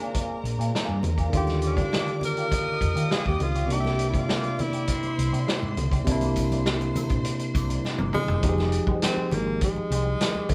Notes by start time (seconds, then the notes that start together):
Already playing: A#3 D4 G#4 A#4 C5 D5 A#5
0.00 C4 F4 G#4 D5
0.14 C4 F4 G#4 D5, kick, closed hi-hat
0.44 A#1, muted clean electric guitar stroke, closed hi-hat
0.58 A#2 C4 F4 G#4 D5, closed hi-hat
0.74 C4 F4 G#4 D5, snare
0.89 G2, muted conga, high conga
1.03 E2, muted clean electric guitar stroke, closed hi-hat, low conga
1.18 C4 F4 G#4 D5, kick, closed hi-hat
1.30 D#2 D3 D#3 A#3 D5 D6, kick, closed hi-hat
1.34 F4 G4 D5
1.47 snare, closed hi-hat, high conga
1.62 muted clean electric guitar stroke, closed hi-hat
1.67 D4
1.77 A#3 F4 G4 D5, kick, closed hi-hat, high conga
1.92 A#3 F4 G4 D5, snare, muted conga
2.08 closed hi-hat
2.21 A#4, closed hi-hat, low conga
2.37 A#3 F4 G4 D5, closed hi-hat
2.50 A#3 F4 G4 D5 D#5 D#6, kick, closed hi-hat, muted conga
2.81 F2, kick, closed hi-hat
2.95 D#3 A#3 F4 G4 D5, closed hi-hat
3.10 A#3 F4 G4 G#4 D5, snare
3.25 D#2 G4, kick, high conga
3.40 C#2 F4, closed hi-hat, low conga
3.55 A#3 F4 G4 D5, closed hi-hat
3.66 C2 C3 A#3 D5 D6, muted conga
3.70 A#3 D4 D#4 E4 G4 D5, closed hi-hat
3.80 E5
3.85 snare, muted conga, high conga
3.99 muted clean electric guitar stroke, closed hi-hat
4.09 E4
4.14 A#3 E4 G4 D5, kick, closed hi-hat, high conga
4.18 F4
4.29 A#3 E4 G4 D5, snare
4.43 closed hi-hat, muted conga
4.59 E4, closed hi-hat, low conga
4.73 A#3 E4 G4 D5, closed hi-hat
4.87 A#3 E4 G4 C5 D5 C6, kick, closed hi-hat
5.03 closed hi-hat, muted conga
5.18 C2, muted clean electric guitar stroke, closed hi-hat
5.32 C3 A#3 E4 G4 D5, closed hi-hat
5.47 A#3 E4 G4 D5, snare
5.62 G#2, muted conga, high conga
5.77 C#2, closed hi-hat, low conga
5.92 A#3 E4 G4 D5, kick, closed hi-hat
6.04 C2 C3 A#3 C4 E4 A#4 C5 D5 C6, kick, closed hi-hat, low conga, muted triangle
6.09 D4 E4
6.21 closed hi-hat, muted conga, high conga, muted triangle
6.36 kick, closed hi-hat, triangle
6.51 C4 E4 A#4 D5, closed hi-hat, high conga, muted triangle
6.66 snare, muted triangle
6.81 muted clean electric guitar stroke, closed hi-hat, muted conga, muted triangle
6.95 C4 E4 A#4 E5, muted fingered electric bass stroke, closed hi-hat, high conga, low conga, triangle
7.09 A#1, muted clean electric guitar stroke, kick, closed hi-hat, muted triangle
7.25 muted clean electric guitar stroke, closed hi-hat
7.39 muted clean electric guitar stroke, closed hi-hat, muted triangle
7.54 C2 C4 E4 A#4 D5, kick, closed hi-hat, triangle
7.68 C4 E4 A#4 D5, closed hi-hat, muted triangle
7.84 muted clean electric guitar stroke, muted fingered electric bass stroke, snare, muted triangle
7.98 G1 C4 E4 A#4 D5, high tom, muted conga, high conga, muted triangle
8.13 G#3, mid tom, low conga, triangle
8.27 F#1, muted clean electric guitar stroke, floor tom, muted triangle
8.41 F1 F3 G#3 D#4 G4 C5, kick, closed hi-hat, low conga
8.46 G4 G#4
8.58 snare, muted conga, high conga
8.72 muted clean electric guitar stroke, closed hi-hat
8.87 G#3 D#4 G4 C5, kick, high conga
9.02 C4, muted clean electric guitar stroke, snare, closed hi-hat
9.17 G#3 D#4 G4 C5, muted fingered electric bass stroke, muted conga
9.31 G#1 A#3, muted clean electric guitar stroke, closed hi-hat, low conga
9.47 muted clean electric guitar stroke
9.61 G#3, muted clean electric guitar stroke, kick, closed hi-hat, muted conga
9.76 muted clean electric guitar stroke, muted conga
9.90 C2 G#3 D#4 G4 C5, closed hi-hat
10.07 muted clean electric guitar stroke
10.21 G#3 D#4 G4 D5, snare, closed hi-hat
10.35 muted conga, high conga
10.49 F#1, kick, closed hi-hat, low conga